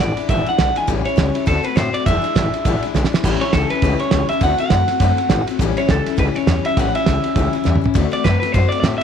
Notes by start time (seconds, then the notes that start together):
0.00 G#1 E3 G#3 D4 E4 D5
0.17 G#3 D4 E4, muted upright bass stroke, ride
0.21 E3
0.29 G#1 E2 B2 E3 G#3 D4 E4 E5, kick, ride
0.46 E3 G#3 D4 E4 F#5, muted upright bass stroke, ride
0.58 B1 E3 G#3 D4 E4, snare, ride
0.75 E3 G#3 D4 E4 G#5, ride
0.87 A1 A2 E3 G3 C#4 E4, kick, ride
1.05 G3 C#4 E4 C#5, muted upright bass stroke, ride
1.16 C#2 E3 G3 C#4 E4, kick, snare, ride
1.35 C#4 E4, muted upright bass stroke, ride
1.39 G3
1.46 D2 D3 A3 C4 F#4 A4, kick, ride
1.63 A3 C4 F#4 B4, ride
1.76 A2 D3 A3 C4 F#4 C5, snare, ride
1.93 A3 C4 F#4 D5, muted upright bass stroke, ride
2.06 E1 E2 B2 E3 G#3 D4 E4 E5, kick, ride
2.22 G#3 D4 E4, ride
2.26 E3
2.35 G#1 E3 G#3 D4 E4, kick, snare, ride
2.53 E3 G#3 D4 E4, muted upright bass stroke, ride
2.65 G#1 E2 B2 E3 G#3 D4 E4, kick, ride
2.82 G#3 D4 E4, muted upright bass stroke, ride
2.86 E3
2.94 B1 E3 G#3 D4 E4, snare
3.04 snare
3.11 D4 E4, muted upright bass stroke, snare
3.15 E3 G#3
3.23 A1 A2 E3 G3 C#4, kick, crash
3.27 E4
3.41 C#4 E4 C#5, muted upright bass stroke, ride
3.45 G3
3.53 C#2 E3 G3 C#4 A4, kick, snare, ride
3.57 E4
3.70 C#4 E4 B4, muted upright bass stroke, ride
3.75 G3
3.82 C#2 A2 E3 G3 C#4 E4, kick, ride
3.99 C#4 E4 C#5, ride
4.04 G3
4.11 C#2 E3 G3 C#4, snare, ride
4.15 E4
4.29 C#4 E4 E5, muted upright bass stroke, ride
4.33 G3
4.41 D2 D3 A3 C4 F#4 F#5, kick, ride
4.58 A3 C4 F#4 F#5, muted upright bass stroke, ride
4.70 F#2 D3 A3 C4, kick, snare, ride
4.74 F#4
4.88 C4 F#4, muted upright bass stroke, snare, ride
4.92 A3
5.00 F#2 D3 A3 C4, kick, ride
5.04 F#4
5.17 A3 C4 F#4, muted upright bass stroke, ride
5.29 G#1 D3 A3 C4, snare, ride
5.33 F#4
5.47 A3 C4 F#4, muted upright bass stroke, ride
5.59 A1 A2 E3 G3 C#4 E4, kick, ride
5.76 C#4 E4 C#5, muted upright bass stroke, ride
5.81 G3
5.88 C#2 E3 G3 A4, kick, snare, ride
5.93 C#4 E4
6.06 G3 C#4 E4, snare, ride
6.17 C#2 A2 E3 G3 C#4 E4 B4, kick, ride
6.35 C#4 E4 C#5, ride
6.39 G3
6.47 E2 E3 G3 C#4, snare, ride
6.51 E4
6.65 G3 C#4 E4 E5, ride
6.77 A1 A2 E3 G3 C#4 E4 F#5, kick, ride
6.95 G3 C#4 E4 E5, ride
7.06 C#2 E3 G3 C#4, kick, snare, ride
7.11 E4
7.24 G3 C#4 E4, ride
7.36 C#2 A2 E3 G3 C#4 E4, kick, ride
7.53 G3 C#4 E4, ride
7.64 E2 E3 G3 C#4 E4, snare
7.76 mid tom
7.81 G3 C#4 E4, muted upright bass stroke
7.86 floor tom
7.94 D2 D3 A3 C4 F#4, kick, ride
8.11 A3 C4 F#4 D5, ride
8.24 F#2 D3 A3 C4 F#4 B4, kick, snare, ride
8.40 C4 F#4 B4, muted upright bass stroke, snare, ride
8.45 A3
8.52 F#2 D3 A3 C4 F#4 C5, kick, ride
8.69 F#4 D5, ride
8.73 A3 C4
8.80 A2 D3 D5, snare, ride
8.84 A3 C4 F#4
8.98 E5, muted upright bass stroke